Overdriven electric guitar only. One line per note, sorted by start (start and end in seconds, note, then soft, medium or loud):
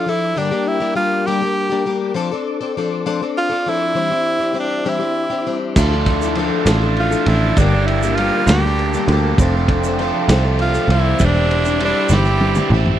5.77 6.36 D3 loud
5.77 6.37 A3 loud
5.77 6.39 D4 medium
5.77 6.38 F4 loud
6.37 6.69 D3 medium
6.37 6.68 A3 medium
6.37 6.69 D4 medium
6.37 6.67 F4 medium
6.68 7.58 D3 medium
6.68 7.30 A3 medium
6.68 7.30 D4 medium
6.68 7.27 F4 medium
7.29 7.58 A3 medium
7.29 7.60 D4 medium
7.29 7.57 F4 medium
7.58 8.48 G2 medium
7.58 8.49 D3 loud
7.58 8.17 G3 loud
7.58 8.18 A#3 medium
7.58 8.19 D4 loud
7.58 8.19 G4 loud
8.19 8.50 G3 medium
8.19 8.49 A#3 medium
8.19 8.49 D4 medium
8.19 8.47 G4 medium
8.48 9.39 G2 medium
8.48 9.38 D3 medium
8.48 9.11 G3 medium
8.48 9.09 A#3 medium
8.48 9.10 D4 medium
8.48 9.07 G4 medium
9.09 9.39 G3 medium
9.09 9.38 A#3 medium
9.09 9.41 D4 medium
9.09 9.37 G4 medium
9.39 10.30 F2 loud
9.39 10.30 C3 medium
9.39 9.99 F3 loud
9.39 10.00 A3 loud
9.39 10.01 C4 loud
9.39 10.01 F4 medium
10.00 10.31 F3 medium
10.00 10.31 A3 medium
10.00 10.30 C4 medium
10.00 10.29 F4 medium
10.30 11.20 F2 medium
10.30 11.20 C3 medium
10.30 10.91 F3 medium
10.30 10.91 A3 medium
10.30 10.90 C4 medium
10.30 10.89 F4 medium
10.90 11.20 F3 medium
10.90 11.19 A3 medium
10.90 11.19 C4 medium
10.90 11.18 F4 medium
11.20 11.80 E3 loud
11.20 11.80 G3 loud
11.20 11.81 C4 loud
11.20 11.82 E4 loud
11.81 12.12 E3 medium
11.81 12.11 G3 medium
11.81 12.10 C4 medium
11.81 12.09 E4 medium
12.11 12.99 E3 medium
12.11 12.74 G3 medium
12.11 12.73 C4 medium
12.11 12.72 E4 medium
12.73 12.99 G3 medium
12.73 12.99 C4 medium
12.73 12.99 E4 medium